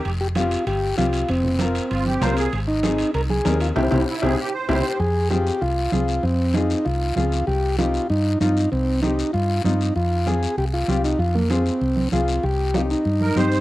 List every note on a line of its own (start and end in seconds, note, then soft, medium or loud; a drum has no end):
0.00 0.11 G4 medium
0.05 0.55 F1 loud
0.05 high conga soft
0.05 high timbale medium
0.05 long guiro medium
0.21 0.28 G4 medium
0.35 0.58 C4 medium
0.35 0.58 F4 medium
0.35 0.65 F4 medium
0.35 0.58 G4 medium
0.35 high conga medium
0.35 high timbale medium
0.35 short guiro medium
0.51 high timbale medium
0.51 short guiro medium
0.66 0.91 G1 medium
0.66 0.96 G4 loud
0.66 high conga soft
0.66 high timbale medium
0.66 long guiro medium
0.97 1.23 C2 medium
0.97 1.19 C4 medium
0.97 1.19 F4 medium
0.97 1.30 F4 medium
0.97 1.20 G4 medium
0.97 high conga medium
0.97 high timbale medium
0.97 short guiro medium
1.13 high timbale medium
1.13 short guiro medium
1.28 1.78 F1 loud
1.28 1.59 C4 medium
1.28 high conga soft
1.28 high timbale medium
1.28 long guiro medium
1.44 low conga medium
1.59 1.81 C4 medium
1.59 2.33 C4 medium
1.59 1.82 F4 medium
1.59 1.82 A#4 medium
1.59 high conga medium
1.59 high timbale medium
1.59 short guiro medium
1.75 high timbale medium
1.75 short guiro medium
1.90 2.16 G1 medium
1.90 2.06 F4 medium
1.90 high conga soft
1.90 high timbale medium
1.90 long guiro medium
2.06 2.22 G4 medium
2.06 high conga medium
2.21 2.47 C2 medium
2.21 2.43 C4 medium
2.21 2.43 F4 medium
2.21 2.44 A#4 medium
2.21 2.36 C5 loud
2.21 high conga medium
2.21 low conga medium
2.21 high timbale medium
2.21 low timbale medium
2.21 short guiro medium
2.37 2.59 G#4 medium
2.37 high timbale medium
2.37 short guiro medium
2.53 3.02 G#1 medium
2.53 high conga soft
2.53 high timbale medium
2.53 long guiro medium
2.68 3.11 D#4 medium
2.83 3.05 C4 medium
2.83 3.05 D#4 medium
2.83 3.05 G#4 medium
2.83 high conga medium
2.83 high timbale medium
2.83 short guiro medium
2.98 high timbale medium
2.98 short guiro medium
3.14 3.39 C2 medium
3.14 3.22 A#4 loud
3.14 high conga soft
3.14 high timbale medium
3.14 long guiro medium
3.30 3.59 G#4 medium
3.30 high conga medium
3.45 3.70 D#2 medium
3.45 3.67 C4 medium
3.45 3.67 D#4 medium
3.45 3.67 A#4 medium
3.45 high conga medium
3.45 high timbale medium
3.45 low timbale medium
3.45 short guiro medium
3.60 3.68 F4 medium
3.60 high timbale medium
3.60 short guiro medium
3.76 3.88 C2 loud
3.76 3.86 C4 medium
3.76 3.86 E4 medium
3.76 4.05 E4 medium
3.76 3.86 G4 medium
3.76 low conga medium
3.76 high timbale medium
3.76 long guiro medium
3.91 4.03 C2 medium
3.91 4.01 C4 medium
3.91 4.01 E4 medium
3.91 4.01 G4 medium
3.91 low conga loud
3.91 high timbale loud
3.91 long guiro medium
4.08 4.22 E4 medium
4.22 4.34 C2 medium
4.22 4.32 C4 medium
4.22 4.32 E4 medium
4.22 4.32 G4 medium
4.22 4.39 G#4 medium
4.22 low conga medium
4.22 high timbale loud
4.22 long guiro medium
4.39 4.53 G4 medium
4.54 4.68 C5 medium
4.69 4.81 C2 medium
4.69 4.79 C4 medium
4.69 4.79 E4 medium
4.69 5.01 G4 medium
4.69 4.79 G4 medium
4.69 4.98 C5 medium
4.69 low conga medium
4.69 high timbale medium
4.69 long guiro loud
5.00 5.49 F2 loud
5.00 5.29 G#4 loud
5.00 high conga soft
5.00 long guiro medium
5.30 5.52 C4 medium
5.30 5.53 F4 medium
5.30 5.63 G4 loud
5.30 5.53 G#4 medium
5.30 high conga medium
5.30 short guiro medium
5.47 short guiro medium
5.61 5.87 C2 medium
5.61 5.92 F4 medium
5.61 high conga soft
5.61 long guiro medium
5.92 6.18 C2 medium
5.92 6.14 C4 medium
5.92 6.14 F4 medium
5.92 6.25 F4 medium
5.92 6.14 G#4 medium
5.92 high conga medium
5.92 short guiro medium
6.08 short guiro medium
6.23 6.73 F2 loud
6.23 6.56 C4 medium
6.23 high conga soft
6.23 long guiro medium
6.54 6.76 C4 medium
6.54 6.86 D#4 medium
6.54 6.76 F4 medium
6.54 6.77 G#4 medium
6.54 high conga medium
6.54 short guiro medium
6.70 short guiro medium
6.85 7.11 C2 medium
6.85 7.15 F4 medium
6.85 high conga soft
6.85 long guiro medium
7.16 7.42 C#2 medium
7.16 7.38 C4 medium
7.16 7.45 F4 medium
7.16 7.39 F4 medium
7.16 7.39 G#4 medium
7.16 high conga medium
7.16 short guiro medium
7.32 short guiro medium
7.47 7.97 C2 loud
7.47 7.76 G4 loud
7.47 high conga soft
7.47 long guiro medium
7.78 8.00 C4 medium
7.78 8.01 D#4 medium
7.78 8.08 F4 medium
7.78 8.01 G4 medium
7.78 high conga medium
7.78 short guiro medium
7.94 short guiro medium
8.10 8.35 G2 medium
8.10 8.39 D#4 medium
8.10 high conga soft
8.10 long guiro medium
8.40 8.66 G2 loud
8.40 8.62 C4 medium
8.40 8.70 D#4 medium
8.40 8.63 D#4 medium
8.40 8.63 F4 medium
8.40 high conga medium
8.40 short guiro medium
8.57 short guiro medium
8.72 9.22 C2 loud
8.72 9.01 C4 medium
8.72 high conga soft
8.72 long guiro medium
9.02 9.24 C4 medium
9.02 9.31 D#4 medium
9.02 9.25 D#4 medium
9.02 9.25 G4 medium
9.02 high conga medium
9.02 short guiro medium
9.19 short guiro medium
9.33 9.59 G2 medium
9.33 9.62 F4 medium
9.33 high conga soft
9.33 long guiro medium
9.64 9.90 G2 loud
9.64 9.87 C4 medium
9.64 9.87 D#4 medium
9.64 9.94 D#4 medium
9.64 9.87 F4 medium
9.64 high conga medium
9.64 short guiro medium
9.81 short guiro medium
9.96 10.45 F2 loud
9.96 10.28 F4 medium
9.96 high conga soft
9.96 long guiro medium
10.26 10.48 C4 medium
10.26 10.48 F4 medium
10.26 10.49 G#4 medium
10.26 10.56 G#4 medium
10.26 high conga medium
10.26 short guiro medium
10.43 short guiro medium
10.58 10.82 C2 medium
10.58 10.65 G4 loud
10.58 high conga soft
10.58 long guiro medium
10.74 11.02 F4 medium
10.88 11.13 C2 medium
10.88 11.10 C4 medium
10.88 11.10 F4 medium
10.88 11.11 G4 medium
10.88 high conga medium
10.88 short guiro medium
11.04 11.19 D#4 medium
11.04 short guiro medium
11.19 11.69 F2 loud
11.19 11.36 F4 medium
11.19 high conga soft
11.19 long guiro medium
11.35 11.49 A#3 medium
11.35 high conga medium
11.50 11.72 C4 medium
11.50 12.09 C4 medium
11.50 11.72 F4 medium
11.50 11.73 G#4 medium
11.50 high conga medium
11.50 short guiro medium
11.66 short guiro medium
11.81 12.06 C2 medium
11.81 high conga soft
11.81 long guiro medium
11.96 high conga medium
12.12 12.38 C2 medium
12.12 12.34 C4 medium
12.12 12.34 F4 medium
12.12 12.45 F4 medium
12.12 12.35 G#4 medium
12.12 high conga medium
12.12 short guiro medium
12.28 short guiro medium
12.43 12.93 C2 loud
12.43 12.76 G4 medium
12.43 high conga soft
12.43 long guiro medium
12.74 12.96 C4 medium
12.74 12.96 D#4 medium
12.74 12.82 F4 medium
12.74 12.96 G4 medium
12.74 high conga medium
12.74 short guiro medium
12.90 13.61 D#4 medium
12.90 short guiro medium
13.05 13.31 G2 medium
13.05 high conga soft
13.05 long guiro medium
13.21 13.37 A#4 medium
13.21 high conga medium
13.36 13.61 G2 medium
13.36 13.58 C4 medium
13.36 13.58 D#4 medium
13.36 13.59 G4 medium
13.36 13.61 C5 loud
13.36 high conga medium
13.36 short guiro medium
13.52 short guiro medium